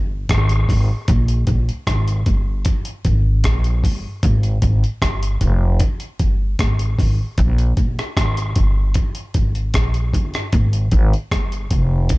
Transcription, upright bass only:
0.00 0.28 G1 medium
0.30 0.67 G#1 medium
0.70 0.89 G#1 medium
1.09 1.46 A#1 loud
1.48 1.67 A#1 medium
1.88 2.25 G#1 loud
2.27 2.64 G1 medium
3.06 3.43 G#1 medium
3.45 3.82 A#1 medium
3.84 4.04 G1 medium
4.24 4.61 G#1 loud
4.63 4.82 G#1 medium
5.03 5.40 G1 medium
5.42 5.79 F1 medium
6.20 6.58 G1 medium
6.60 6.97 G#1 medium
7.00 7.19 G#1 medium
7.39 7.76 A#1 loud
7.78 7.97 A#1 medium
8.18 8.55 G#1 loud
8.57 8.94 G1 medium
9.36 9.73 G#1 medium
9.75 10.12 A#1 medium
10.14 10.33 G1 medium
10.54 10.91 G#1 loud
10.93 11.12 G#1 loud
11.32 11.69 G1 medium
11.72 12.09 F1 medium

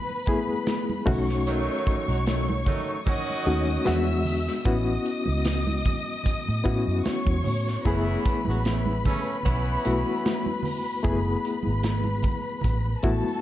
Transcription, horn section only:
1.47 2.05 D#3 loud
1.47 2.05 F#3 loud
1.47 2.05 A3 loud
1.47 2.05 D#4 loud
2.08 2.23 F#3 medium
2.08 2.23 C#4 medium
2.08 2.23 D#4 medium
2.08 2.23 F#4 medium
2.27 2.59 D#3 medium
2.27 2.59 F#3 medium
2.27 2.59 A3 medium
2.27 2.59 D#4 medium
2.66 2.98 D#3 medium
2.66 2.98 F#3 medium
2.66 2.98 A3 medium
2.66 2.98 D#4 loud
3.06 4.22 D#3 medium
3.06 4.22 F#3 loud
3.06 4.22 C#4 loud
3.06 4.22 F#4 loud
7.86 8.43 E3 medium
7.86 8.44 B3 loud
7.86 8.44 C#4 medium
7.86 8.43 E4 loud
8.48 8.62 F#3 medium
8.48 8.62 B3 medium
8.48 8.62 C#4 medium
8.48 8.62 F#4 medium
8.66 8.97 E3 medium
8.66 8.97 B3 medium
8.66 8.97 C#4 medium
8.66 8.97 E4 medium
9.06 9.38 C#3 medium
9.06 9.38 A3 medium
9.06 9.37 C#4 loud
9.45 10.61 E3 medium
9.45 10.61 B3 medium
9.45 10.61 C#4 loud
9.45 10.61 E4 loud

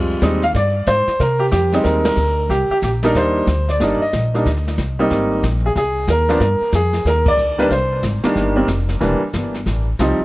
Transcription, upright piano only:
0.00 0.20 G3 medium
0.00 0.20 G#3 soft
0.00 0.20 C4 soft
0.00 0.20 F4 medium
0.22 0.40 G3 medium
0.22 0.40 G#3 medium
0.22 0.41 C4 medium
0.22 0.41 D#4 medium
0.43 0.48 F5 loud
0.56 0.89 D5 medium
0.88 1.21 C5 medium
1.20 1.41 A#4 medium
1.39 1.44 G4 medium
1.52 1.85 G4 medium
1.73 2.15 G3 medium
1.73 2.15 G#3 medium
1.73 2.16 C4 medium
1.73 2.16 D#4 medium
1.84 2.03 A#4 medium
2.05 2.51 A#4 medium
2.50 2.70 G4 medium
2.71 2.76 G4 medium
2.84 2.89 G4 medium
3.03 3.45 G3 medium
3.03 3.46 A#3 medium
3.03 3.46 D4 medium
3.03 3.46 D#4 medium
3.03 3.16 A#4 medium
3.17 3.71 C5 medium
3.70 3.99 D5 medium
3.80 3.99 G3 medium
3.80 3.99 A#3 soft
3.80 3.99 D4 medium
3.80 3.99 D#4 medium
4.02 4.62 D#5 medium
4.34 4.44 G3 medium
4.34 4.45 A#3 medium
4.34 4.45 D4 medium
4.34 4.45 D#4 medium
4.99 5.41 G3 medium
4.99 5.41 A#3 medium
4.99 5.41 C4 medium
4.99 5.42 D#4 medium
5.66 5.71 G#4 medium
5.77 6.07 G#4 medium
6.10 6.39 A#4 medium
6.29 6.39 F3 medium
6.29 6.40 A#3 medium
6.29 6.40 B3 medium
6.29 6.40 D4 medium
6.41 6.71 A#4 medium
6.75 7.07 G#4 medium
7.07 7.28 A#4 medium
7.28 7.61 D5 loud
7.58 7.69 D#3 medium
7.58 7.69 G3 medium
7.58 7.70 A#3 medium
7.58 7.70 D4 medium
7.58 7.65 B4 medium
7.72 8.01 C5 medium
8.23 8.54 D#3 medium
8.23 8.54 G3 medium
8.23 8.54 A#3 medium
8.23 8.55 D4 medium
8.56 8.67 D#3 medium
8.56 8.67 G3 medium
8.56 8.67 A#3 medium
8.56 8.67 C4 medium
9.01 9.19 E3 medium
9.01 9.19 G3 medium
9.01 9.20 A#3 medium
9.01 9.20 D4 medium
9.99 10.18 F3 medium
9.99 10.18 G3 medium
9.99 10.18 C4 medium
9.99 10.18 D#4 medium

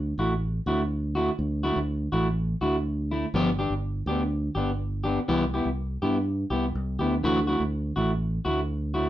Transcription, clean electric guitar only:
0.19 0.33 A3 medium
0.19 0.33 E4 medium
0.19 0.33 F#4 medium
0.67 0.82 A3 medium
0.67 0.82 E4 medium
0.67 0.81 F#4 medium
1.15 1.31 A3 soft
1.15 1.30 E4 medium
1.15 1.30 F#4 medium
1.63 1.79 A3 medium
1.63 1.78 E4 medium
1.63 1.78 F#4 medium
2.12 2.28 A3 medium
2.12 2.27 E4 medium
2.12 2.27 F#4 medium
2.61 2.77 A3 soft
2.61 2.76 E4 medium
2.61 2.76 F#4 medium
3.11 3.26 A3 medium
3.11 3.25 E4 medium
3.34 3.49 F3 medium
3.34 3.49 B3 medium
3.34 3.49 D4 medium
3.34 3.49 G4 medium
3.59 3.73 D4 medium
3.59 3.73 G4 medium
3.59 muted clean electric guitar stroke medium
4.07 4.23 B3 medium
4.07 4.22 D4 medium
4.07 4.22 G4 medium
4.55 4.71 B3 medium
4.55 4.71 D4 medium
4.55 4.70 G4 medium
5.04 5.20 B3 medium
5.04 5.19 D4 medium
5.04 5.19 G4 medium
5.28 5.43 E3 medium
5.28 5.43 B3 medium
5.28 5.43 E4 medium
5.28 5.44 G4 medium
5.54 5.69 B3 medium
5.54 5.69 E4 medium
5.54 5.68 G4 medium
6.02 6.18 B3 medium
6.02 6.17 E4 medium
6.02 6.16 G4 medium
6.50 6.66 B3 medium
6.50 6.65 E4 medium
6.50 6.65 G4 medium
6.99 7.15 B3 medium
6.99 7.14 E4 medium
6.99 7.14 G4 medium
7.24 7.38 E3 medium
7.24 7.38 A3 medium
7.24 7.38 E4 medium
7.24 7.39 F#4 loud
7.47 7.63 A3 medium
7.47 7.63 E4 medium
7.47 7.62 F#4 medium
7.96 8.12 A3 medium
7.96 8.11 E4 medium
7.96 8.11 F#4 medium
8.45 8.60 A3 medium
8.45 8.60 E4 medium
8.45 8.60 F#4 medium
8.94 9.09 A3 medium
8.94 9.09 E4 medium
8.94 9.08 F#4 medium

